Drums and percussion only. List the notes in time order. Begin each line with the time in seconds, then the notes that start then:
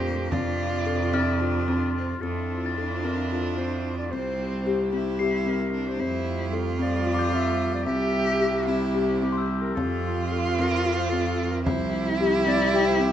0.32 frame drum
0.59 frame drum
1.14 frame drum
1.41 frame drum
1.68 frame drum
1.96 frame drum
9.77 frame drum
10.59 frame drum
11.13 frame drum
11.66 frame drum
12.47 frame drum
13.00 frame drum